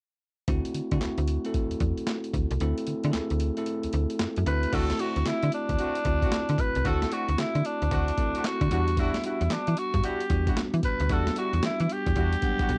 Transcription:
0.48 D2 A3 C4 E4 F#4, kick, closed hi-hat
0.65 closed hi-hat
0.74 D3, closed hi-hat
0.91 D3 A3 C4 E4 F#4, kick, closed hi-hat
1.01 D2, snare, clap, closed hi-hat
1.18 D2, closed hi-hat
1.28 closed hi-hat
1.45 A3 C4 E4 A4, closed hi-hat
1.54 kick, closed hi-hat
1.71 E2, closed hi-hat
1.80 E2, kick, closed hi-hat
1.98 closed hi-hat
2.07 snare, clap, closed hi-hat
2.24 closed hi-hat
2.34 D2, kick, closed hi-hat
2.51 C2, closed hi-hat
2.60 D2 A3 C4 E4 A4, closed hi-hat
2.78 closed hi-hat
2.87 D3, closed hi-hat
3.04 D3 A3 C4 E4 G#4, closed hi-hat
3.12 D2 A4, snare, clap, closed hi-hat
3.30 D2, closed hi-hat
3.40 closed hi-hat
3.57 A3 C4 E4 A4, closed hi-hat
3.66 closed hi-hat
3.83 D2, closed hi-hat
3.93 D2, closed hi-hat
4.10 closed hi-hat
4.19 F#2, snare, clap, closed hi-hat
4.36 F#2, closed hi-hat
4.46 D2 A3 C4 E4 F#4 B4, closed hi-hat
4.63 closed hi-hat
4.72 D2 A3 C4 D4 E4 F#4 A4, kick, closed hi-hat, crash
4.90 snare, closed hi-hat
4.99 A3 C4 D4 F#4, closed hi-hat
5.16 D2, closed hi-hat
5.26 D3 E4, snare, clap, closed hi-hat
5.43 D3, closed hi-hat
5.52 D4, closed hi-hat
5.69 D2, kick, closed hi-hat
5.79 A3 C4 D4 F#4, closed hi-hat
5.95 closed hi-hat
6.05 D2 A3 C4 E4 F#4, kick, closed hi-hat
6.22 A3 C4 D4 F#4, kick, closed hi-hat
6.32 snare, clap, closed hi-hat
6.49 D3, closed hi-hat
6.58 B4, kick, closed hi-hat
6.75 C2, closed hi-hat
6.85 D2 A3 C4 D4 E4 F#4 A4, kick, closed hi-hat
7.02 snare, closed hi-hat
7.11 A3 C4 D4 F#4, closed hi-hat
7.28 D2, closed hi-hat
7.38 D3 E4, snare, clap, closed hi-hat
7.55 D3, closed hi-hat
7.65 D4, closed hi-hat
7.82 D2, closed hi-hat
7.91 D2 A3 C4 D4 F#4, kick, closed hi-hat
8.08 closed hi-hat
8.17 A3 C4 E4 A4, kick, closed hi-hat
8.35 A3 C4 D4 F#4, closed hi-hat
8.44 F#4, snare, clap, closed hi-hat
8.61 D3, kick, closed hi-hat
8.71 E2 G3 B3 D4 E4 F#4, closed hi-hat
8.88 closed hi-hat
8.97 G3 D4 E4 F#4, kick, closed hi-hat
9.14 snare, closed hi-hat
9.24 G3 D4 E4 F#4, closed hi-hat
9.41 E2, closed hi-hat
9.50 E3 D4, snare, clap, closed hi-hat
9.67 E3, closed hi-hat
9.77 F#4, closed hi-hat
9.94 G2, kick, closed hi-hat
10.03 G3 D4 E4 F#4 G4, closed hi-hat
10.20 closed hi-hat
10.30 E2 G3 B3 D4 F#4, kick, closed hi-hat
10.47 G3 D4 E4 F#4, kick, closed hi-hat
10.57 snare, clap, closed hi-hat
10.74 E3, closed hi-hat
10.83 B4, kick, closed hi-hat
11.00 D2, closed hi-hat
11.09 E2 G3 B3 D4 E4 F#4 A4, kick, closed hi-hat
11.27 snare, closed hi-hat
11.36 G3 D4 E4 F#4, closed hi-hat
11.53 E2, closed hi-hat
11.63 E3 E4, snare, clap, closed hi-hat
11.80 E3, closed hi-hat
11.90 G4, closed hi-hat
12.07 E2, kick, closed hi-hat
12.16 E2 G3 D4 E4 F#4, kick, closed hi-hat
12.33 closed hi-hat
12.42 F#3 B3 D4 F#5, kick, closed hi-hat
12.49 G3
12.59 G3 D4 E4 F#4, kick, closed hi-hat
12.69 B1, kick, closed hi-hat

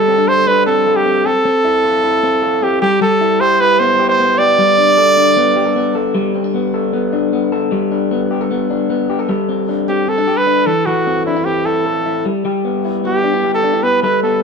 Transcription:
Already playing: G3 A4
0.08 C4
0.18 D4
0.28 A4 C5
0.47 D4 B4
0.66 C4 A4
0.87 A4
0.96 G4
1.06 C4
1.26 C4 A4
1.45 C4
1.65 E4
1.84 A4
2.04 E4
2.23 C4
2.42 A4
2.62 C4 G4
2.82 G3 G4
3.01 G3 A4
3.21 E4
3.40 G4 C5
3.60 E4 B4
3.79 B3 C5
4.00 G4
4.09 C5
4.20 B3
4.38 G4 D5
4.58 G3
4.78 D4
4.98 A4
5.17 D4
5.37 B3
5.56 G4
5.66 A4
5.76 B3
5.95 A4
6.15 G3
6.34 C4
6.44 D4
6.54 B3
6.74 A4
6.93 B3
7.13 D4
7.33 B3
7.52 A4
7.72 G3
7.92 D4
8.11 B3
8.31 G4
8.41 A4
8.51 B3
8.70 D4
8.90 B3
9.10 G4
9.19 A4
9.29 G3 A4
9.49 C4
9.69 D4
9.88 C4 G4
10.08 C4 A4
10.18 D4
10.27 G4
10.37 A4 B4
10.47 D4
10.66 E3 A4
10.86 E3 F#4 A4
11.07 C4
11.26 D4 E4
11.36 E4
11.45 C4 G4
11.65 E4 A4
11.86 A4
12.06 E4
12.26 G3
12.45 G3 G4
12.65 B3
12.85 E4
13.04 B3 G4
13.24 D4
13.33 E4
13.43 G4
13.54 A4
13.64 D4
13.73 E4
13.83 B3 B4
14.03 G3 A4 B4
14.23 B3 A4

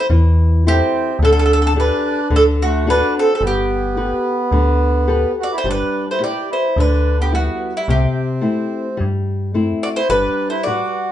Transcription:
0.10 E2 E3
0.66 C4 E4 G4 A4 C5
1.19 D2 D3 D4
1.25 A4
1.33 A4
1.39 A4
1.46 A4
1.53 A4
1.62 A4
1.67 A4
1.75 D4 G4 A4
1.80 B4
2.30 D2 D3
2.35 D4 A4
2.62 A3 F#4
2.87 D4 F#4 A4 B4
3.18 C4 A4
3.34 C4 A4
3.41 G1 G3 B3
3.47 G4
3.97 G4 A4 B4
4.52 D2 D3
5.07 G4 A4 B4
5.40 F#4 D5
5.53 E4
5.58 C5
5.64 G1 G3 D4
5.71 B4
6.11 E4 C5
6.20 E4 G4 B4 D5
6.50 E4 C5
6.76 D2 D3 D4 B4
7.20 B3 G4
7.32 G3 B3 E4 F#4 B4
7.76 G3 E4
7.88 C2 C3 C4 G4
8.41 A3 C4 E4
8.97 G2 G3
9.54 A3 C4 E4
9.83 F#4 D5
9.96 E4 C5
10.10 G1 G3 D4 B4
10.50 E4 C5
10.63 G3 F#4 D5
10.68 B4

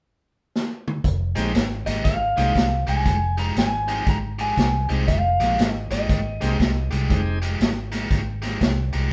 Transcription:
0.56 snare
0.88 mid tom
1.04 F1, kick, closed hi-hat
1.35 A#1 F3 G#3 C4 D#4 G4, snare, closed hi-hat
1.55 G#1, snare, closed hi-hat
1.86 G#1 F3 G#3 D#4 G4 D#5, snare, closed hi-hat
2.04 G#1 F5, kick, snare, closed hi-hat
2.36 C2 F3 G#3 C4 D#4 G4, snare, closed hi-hat
2.56 C2, kick, snare, closed hi-hat
2.87 C2 F3 G#3 D#4 G4 G#5, closed hi-hat
3.06 F1, kick, closed hi-hat
3.37 F3 G#3 D#4 G4 A#5, closed hi-hat
3.56 G#1 G#5, snare, closed hi-hat
3.87 F3 G#3 C4 D#4 G4, closed hi-hat
4.07 G#1 A#5, kick, closed hi-hat
4.39 F3 G#3 D#4 G4 G#5, closed hi-hat
4.57 C2, kick, snare, closed hi-hat
4.89 C2 F3 G#3 C4 D#4 G4, closed hi-hat
5.08 F1 F5, kick, closed hi-hat
5.40 A#1 F3 G#3 D#4 G4, snare, closed hi-hat
5.59 G#1, snare, closed hi-hat
5.71 D#5
5.91 G#1 F3 G#3 D#4 G4 D#5, snare, closed hi-hat
6.09 G#1, kick, snare, closed hi-hat
6.40 C2 F3 G#3 C4 D#4 G4, snare, closed hi-hat
6.60 C2, kick, snare, closed hi-hat
6.91 C2 F3 G#3 D#4 G4, closed hi-hat
7.09 F1 G#3 C4 D#4 G4, kick, closed hi-hat
7.42 F3 G#3 D#4 G4, closed hi-hat
7.61 G#1, snare, closed hi-hat
7.92 F3 G#3 D#4 G4, snare, closed hi-hat
8.11 G#1, kick, snare, closed hi-hat
8.42 F3 G#3 D#4 G4, snare, closed hi-hat
8.61 C2, kick, snare, closed hi-hat
8.93 C2 F3 G#3 D#4 G4, closed hi-hat

